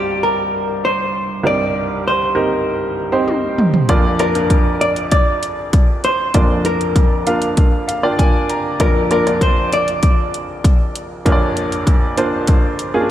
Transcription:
Already playing: upright piano C2 G2 C4 D#4 G4 D5 F5, hollow-body jazz guitar G4
0.23 hollow-body jazz guitar A#4
0.85 hollow-body jazz guitar C5
1.43 upright piano C2 G2 C4 D#4 G4 A#4, hollow-body jazz guitar D5
2.08 hollow-body jazz guitar C5
2.35 upright piano C4 D#4 G4 A#4
3.12 upright piano C4 D#4 G4 C5
3.28 high tom
3.58 mid tom
3.74 floor tom
3.89 upright piano A#1 F2 A#3 D4 F4 D5, kick, closed hi-hat
4.19 upright piano A#3 D4 F4 D5, hollow-body jazz guitar A#4, closed hi-hat
4.35 upright piano A#3 D4 F4 A#4, closed hi-hat
4.50 kick, closed hi-hat
4.81 hollow-body jazz guitar D5, closed hi-hat
4.96 closed hi-hat
5.12 hollow-body jazz guitar D5, kick, closed hi-hat
5.43 closed hi-hat
5.73 kick, closed hi-hat
6.04 hollow-body jazz guitar C5, closed hi-hat
6.34 upright piano A#1 F2 A#3 D4 F4 D5, kick, closed hi-hat
6.65 hollow-body jazz guitar A#4, closed hi-hat
6.81 closed hi-hat
6.96 kick, closed hi-hat
7.27 upright piano A#3 D4 F4 F5, closed hi-hat
7.42 closed hi-hat
7.57 kick, closed hi-hat
7.88 upright piano F5, closed hi-hat
8.03 upright piano A#3 D4 F4 D5 G5
8.19 upright piano G#5, kick, closed hi-hat
8.50 upright piano A#5, closed hi-hat
8.80 upright piano A#1 F2 A#3 D4 F4 D5, hollow-body jazz guitar A#4, kick, closed hi-hat
9.11 upright piano A#3 D4 F4 D5, hollow-body jazz guitar A#4, closed hi-hat
9.27 upright piano A#3 D4 F4 D5, closed hi-hat
9.41 hollow-body jazz guitar C5, kick, closed hi-hat
9.73 hollow-body jazz guitar D5, closed hi-hat
9.88 closed hi-hat
10.03 kick, closed hi-hat
10.34 closed hi-hat
10.64 kick, closed hi-hat
10.96 closed hi-hat
11.26 upright piano A#1 F2 A#3 D4 F4 C#5, kick, closed hi-hat
11.32 upright piano D5
11.57 closed hi-hat
11.72 closed hi-hat
11.87 kick, closed hi-hat
12.17 upright piano A#3 D4 F4 C5, closed hi-hat
12.47 kick, closed hi-hat
12.79 closed hi-hat
12.94 upright piano A#3 C#4 F4 G#4
13.01 upright piano D4

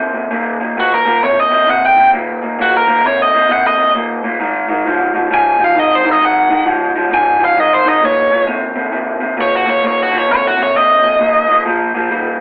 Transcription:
Already playing: clean electric guitar D#2 C3
0.14 clean electric guitar D#2 C3
0.31 clean electric guitar D#2 A#2
0.60 clean electric guitar D#2 A#2
0.77 clean electric guitar D#2 A#2, overdriven electric guitar F#4
0.94 overdriven electric guitar A#4
1.05 clean electric guitar D#2 A#2
1.23 clean electric guitar D#2 C3, overdriven electric guitar C#5
1.40 overdriven electric guitar D#5
1.51 clean electric guitar D#2 C3
1.67 clean electric guitar D#2 C3, overdriven electric guitar F#5
1.86 overdriven electric guitar G5
1.96 clean electric guitar D#2 C3
2.13 clean electric guitar D#2 A#2
2.42 clean electric guitar D#2 A#2
2.59 clean electric guitar D#2 A#2, overdriven electric guitar F#4
2.77 overdriven electric guitar A#4
2.87 clean electric guitar D#2 A#2
3.04 clean electric guitar D#2 C3, overdriven electric guitar C#5
3.22 overdriven electric guitar D#5
3.33 clean electric guitar D#2 C3
3.49 clean electric guitar D#2 C3, overdriven electric guitar F#5
3.67 overdriven electric guitar D#5
3.78 clean electric guitar D#2 C3
3.94 clean electric guitar D#2 A#2
4.23 clean electric guitar D#2 A#2
4.40 clean electric guitar G#2 D#3
4.68 clean electric guitar G#2 D#3
4.85 clean electric guitar G#2 F3
5.14 clean electric guitar G#2 F3
5.31 clean electric guitar G#2 F3, overdriven electric guitar G#5
5.59 clean electric guitar G#2 F3
5.64 overdriven electric guitar F5
5.75 clean electric guitar G#2 D#3
5.79 overdriven electric guitar D#5
5.95 overdriven electric guitar C5
6.05 clean electric guitar G#2 D#3
6.11 overdriven electric guitar D#5
6.21 clean electric guitar G#2 D#3
6.25 overdriven electric guitar F#5
6.50 clean electric guitar G#2 D#3
6.66 clean electric guitar G#2 F3
6.95 clean electric guitar G#2 F3
7.10 clean electric guitar G#2 F3
7.14 overdriven electric guitar G#5
7.40 clean electric guitar G#2 F3
7.45 overdriven electric guitar F5
7.57 clean electric guitar G#2 D#3, overdriven electric guitar D#5
7.74 overdriven electric guitar C5
7.85 clean electric guitar G#2 D#3, overdriven electric guitar D#5
8.02 clean electric guitar D#2 A#2, overdriven electric guitar C#5
8.31 clean electric guitar D#2 A#2
8.47 clean electric guitar D#2 C3
8.75 clean electric guitar D#2 C3
8.92 clean electric guitar D#2 C3
9.20 clean electric guitar D#2 C3
9.37 clean electric guitar D#2 A#2, overdriven electric guitar C#5
9.55 overdriven electric guitar F#4
9.65 clean electric guitar D#2 A#2
9.70 overdriven electric guitar C#5
9.83 clean electric guitar D#2 A#2
9.87 overdriven electric guitar C#5
10.03 overdriven electric guitar F#4
10.12 clean electric guitar D#2 A#2
10.18 overdriven electric guitar C#5
10.28 clean electric guitar D#2 C3, overdriven electric guitar C#5
10.47 overdriven electric guitar F#4
10.57 clean electric guitar D#2 C3
10.63 overdriven electric guitar C#5
10.74 clean electric guitar D#2 C3, overdriven electric guitar D#5
11.02 clean electric guitar D#2 C3
11.19 clean electric guitar D#2 A#2
11.48 clean electric guitar D#2 A#2
11.66 clean electric guitar A#2 F3
11.94 clean electric guitar A#2 F3
12.11 clean electric guitar A#2 G3

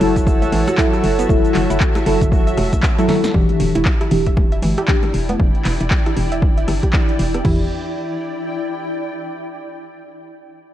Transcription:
Already playing: ambient pad F#4 E5 A5, analog synth pad C#5 F#5 A5 E6
0.01 fm bass F#1, synth stab F#3 E4 A4, open hi-hat, muted conga
0.16 synth arpeggio sound E5, kick, closed hi-hat, cabasa
0.27 kick, cabasa
0.42 synth arpeggio sound E5, closed hi-hat, muted conga, cabasa
0.52 fm bass A1, synth arpeggio sound E3, open hi-hat, high conga
0.67 synth arpeggio sound F#4, cross-stick, closed hi-hat, muted conga, cabasa
0.78 synth stab F#3 E4 A4, kick, clap, cabasa
0.93 cross-stick, closed hi-hat, cabasa
1.03 fm bass F#1, open hi-hat, muted conga
1.19 synth arpeggio sound B3, closed hi-hat, cabasa
1.29 fm bass F#1, synth stab F#3 E4 A4, kick, muted conga, cabasa
1.45 closed hi-hat, cabasa
1.55 fm bass F#1, clap, open hi-hat, low conga
1.70 fm bass F#1, synth arpeggio sound E4, closed hi-hat, muted conga, cabasa
1.80 kick, clap, cabasa
1.95 synth arpeggio sound E4, cross-stick, closed hi-hat, muted conga, cabasa
2.06 fm bass F#1, synth stab F#3 E4 A4, open hi-hat
2.21 synth arpeggio sound E5, kick, closed hi-hat, low conga, cabasa
2.32 kick, muted conga, cabasa
2.47 synth arpeggio sound E5, closed hi-hat, cabasa
2.57 fm bass E1, cross-stick, open hi-hat, muted conga, high conga
2.73 fm bass B1, synth arpeggio sound E5, kick, closed hi-hat, high conga, cabasa
2.83 kick, clap, cabasa
2.98 synth stab F#3 E4 A4, synth arpeggio sound E4, closed hi-hat, muted conga, cabasa
3.08 synth stab F#3 E4 A4, snare, open hi-hat, low conga
3.24 snare, closed hi-hat, muted conga, high conga, cabasa
3.34 fm bass E1, synth stab E3 D4 G4, ambient pad E4, kick
3.49 ambient pad D5, closed hi-hat, muted conga
3.60 fm bass E1, ambient pad G5, open hi-hat, low conga
3.75 fm bass E1, synth arpeggio sound E4, closed hi-hat, muted conga
3.85 kick, clap
4.01 synth arpeggio sound E4, cross-stick, closed hi-hat
4.11 fm bass E1, synth stab E3 D4 G4, open hi-hat, muted conga
4.26 synth arpeggio sound E5, kick, closed hi-hat
4.37 kick, muted conga
4.52 synth arpeggio sound E5, closed hi-hat
4.62 fm bass G1, synth arpeggio sound E3, open hi-hat, high conga
4.77 synth arpeggio sound G4, cross-stick, closed hi-hat, muted conga
4.88 synth stab E3 D4 G4, kick, clap
5.03 cross-stick, closed hi-hat, muted conga
5.14 fm bass E1, open hi-hat
5.29 synth arpeggio sound B3, closed hi-hat, high conga
5.39 fm bass E1, synth stab E3 D4 G4, kick
5.55 closed hi-hat
5.65 fm bass E1, clap, open hi-hat
5.80 fm bass E1, synth arpeggio sound E4, closed hi-hat
5.90 kick, clap
6.06 synth arpeggio sound E4, cross-stick, closed hi-hat
6.16 fm bass E1, synth stab E3 D4 G4, open hi-hat
6.32 synth arpeggio sound E5, closed hi-hat
6.42 kick
6.57 synth arpeggio sound E5, closed hi-hat
6.68 fm bass G1, synth arpeggio sound E3, cross-stick, open hi-hat
6.83 synth arpeggio sound G4, kick, closed hi-hat
6.93 synth stab E3 D4 G4, kick, clap
7.09 closed hi-hat
7.19 fm bass E1, open hi-hat
7.34 synth arpeggio sound B3, cross-stick, closed hi-hat
7.44 fm bass E1, synth stab E3 D4 G4, ambient pad E4, synth arpeggio sound E4, kick, floor tom, crash
7.54 ambient pad D5
7.62 ambient pad G5

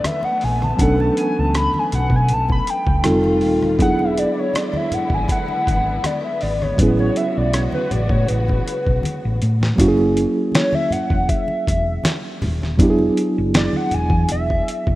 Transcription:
Already playing: string section E3 A3 B3, reed electric piano F#3 B3 C#4 D4 A4
0.04 analog synth lead E5, cross-stick, closed hi-hat, muted conga, high conga
0.23 analog synth lead F#5, muted conga
0.41 fingered electric bass A#1, analog synth lead G#5, open hi-hat
0.62 analog synth lead A5, cross-stick, high conga
0.77 fingered electric bass B1, reed electric piano F#3 B3 C#4, kick, closed hi-hat, low conga
0.81 reed electric piano D4 A4, analog synth lead F#5
1.00 analog synth lead A5, muted conga
1.17 analog synth lead G#5, closed hi-hat
1.39 fingered electric bass C#2, analog synth lead A5
1.55 analog synth lead B5, cross-stick, closed hi-hat
1.74 high conga
1.79 analog synth lead G#5
1.92 fingered electric bass B1, analog synth lead F#5, closed hi-hat, low conga
2.10 fingered electric bass B2, kick
2.16 analog synth lead G#5
2.29 fingered electric bass B1, closed hi-hat, muted conga
2.33 analog synth lead A5
2.49 analog synth lead B5, kick, muted conga
2.67 analog synth lead G5, closed hi-hat
2.87 fingered electric bass C#2, kick
3.03 fingered electric bass F1, string section D#3 G3 F4, reed electric piano G3 C4 D#4 F4 A4, cross-stick, closed hi-hat, muted conga, high conga
3.24 muted conga
3.41 fingered electric bass D#1, open hi-hat
3.62 cross-stick, high conga
3.77 fingered electric bass E1, string section D3 G#3 B3 E4, reed electric piano F#3 B3 D4, kick, closed hi-hat, muted conga, low conga
3.81 reed electric piano E4 G#4, analog synth lead F#5
3.99 analog synth lead E5, muted conga
4.17 analog synth lead D5, closed hi-hat
4.39 analog synth lead C#5
4.54 analog synth lead D5, cross-stick, closed hi-hat, muted conga
4.73 analog synth lead E5, muted conga, high conga
4.91 analog synth lead F#5, muted fingered electric bass stroke, closed hi-hat, low conga
5.10 fingered electric bass G#1, kick
5.14 analog synth lead G#5
5.28 analog synth lead F#5, kick, closed hi-hat, muted conga
5.48 muted conga
5.67 fingered electric bass G#1, kick, closed hi-hat
6.04 analog synth lead D5, cross-stick, closed hi-hat, high conga
6.24 analog synth lead E5
6.41 fingered electric bass G#1, analog synth lead D5, open hi-hat
6.62 analog synth lead C#5, cross-stick, high conga
6.77 fingered electric bass A1, string section C#3 F#4, reed electric piano F#3 B3 C#4, analog synth lead B4, kick, closed hi-hat, muted conga, low conga
6.81 reed electric piano E4 G#4
6.99 analog synth lead C#5, muted conga
7.16 analog synth lead E5, closed hi-hat
7.37 fingered electric bass B1, analog synth lead D5
7.53 analog synth lead C#5, cross-stick, closed hi-hat
7.72 analog synth lead B4, high conga
7.91 fingered electric bass A1, analog synth lead D5, closed hi-hat, low conga
8.09 fingered electric bass A2, analog synth lead C#5, kick
8.27 fingered electric bass A1, analog synth lead B4, closed hi-hat, muted conga
8.48 kick, muted conga
8.68 closed hi-hat
8.87 fingered electric bass B1, kick
9.03 muted fingered electric bass stroke, closed hi-hat, muted conga, high conga
9.25 fingered electric bass A1
9.42 fingered electric bass A2, closed hi-hat
9.61 snare, high conga
9.76 reed electric piano F#3 A#3 C#4, kick, closed hi-hat, low conga
9.80 fingered electric bass F#1, reed electric piano E4 F#4
9.88 reed electric piano G#4
9.97 muted conga
10.17 closed hi-hat
10.52 analog synth lead C#5, snare, closed hi-hat, muted conga
10.73 analog synth lead E5, muted conga, high conga
10.91 analog synth lead F#5, muted fingered electric bass stroke, closed hi-hat, low conga
11.10 fingered electric bass E1, kick
11.29 analog synth lead E5, kick, closed hi-hat
11.48 muted conga
11.67 fingered electric bass E1, kick, closed hi-hat
12.04 snare, closed hi-hat, high conga
12.42 fingered electric bass D#1, open hi-hat, low conga
12.62 snare, high conga
12.77 fingered electric bass E1, reed electric piano F#3 B3 D4, kick, closed hi-hat, muted conga, low conga
12.81 reed electric piano E4 G4
12.90 reed electric piano G#4
12.99 muted conga
13.17 closed hi-hat
13.38 fingered electric bass F#1
13.54 analog synth lead D5, snare, closed hi-hat
13.73 analog synth lead F#5, high conga
13.91 fingered electric bass E1, analog synth lead G#5, closed hi-hat, low conga
14.10 fingered electric bass E2, kick
14.28 fingered electric bass E1, analog synth lead E5, closed hi-hat, muted conga
14.50 kick
14.68 closed hi-hat
14.87 fingered electric bass F#1, kick

